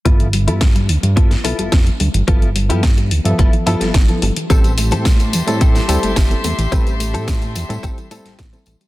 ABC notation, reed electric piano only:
X:1
M:4/4
L:1/16
Q:1/4=108
K:Gmix
V:1 name="Reed electric piano"
z16 | [F,B,EA] z2 [F,B,EA] z3 [F,B,Ae]3 [F,B,EA]2 z [F,B,EA]2 z | [G,CEA] z2 [G,CEA] z3 [G,CEA]3 [G,CEA]2 z [G,CEA]2 z | [G,CEA] z2 [G,CEA] z3 [G,CEA]3 [G,CEA]2 z [G,CEA]2 z |]